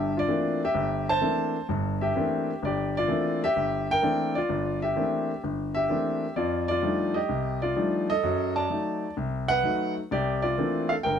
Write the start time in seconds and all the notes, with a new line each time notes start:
Already playing: G1 G2 G4 E5
0.17 F4 D5
0.28 E3 A3 A#3 C4 D4
0.64 G4 E5
0.74 G1
1.09 C5 A5
1.21 E3 A3 A#3 C4 D4
1.69 G1 G2
2.01 G4 E5
2.16 E3 A3 A#3 C4 D4
2.63 G1 D5
2.67 G4
2.97 F4 D5
3.08 E3 A3 A#3 C4 D4
3.44 G4 E5
3.56 G1
3.91 A#4 G5
4.02 E3 A3 A#3 C4 D4
4.35 F4 D5
4.49 G1
4.82 G4 E5
4.96 E3 A3 A#3 C4 D4
5.44 G1
5.75 G4 E5
5.89 E3 A3 A#3 C4 D4
6.36 F2 F4 D5
6.68 F4 D5
6.82 F3 G3 A3 D4 D#4
7.14 G4 D#5
7.29 C2
7.62 F4 D5
7.76 F3 G3 A3 D4 D#4
8.10 A4 D#5
8.23 F#2 F#3
8.56 D5 A5
8.70 F#3 A3 D#4
9.17 C2
9.48 B4 F#5
9.63 F#3 A3 D#4
10.11 C2 G4 D5
10.42 F4 D5
10.58 E3 A3 A#3 C4 D4
10.89 A4 F5
11.03 G1 A#4 G5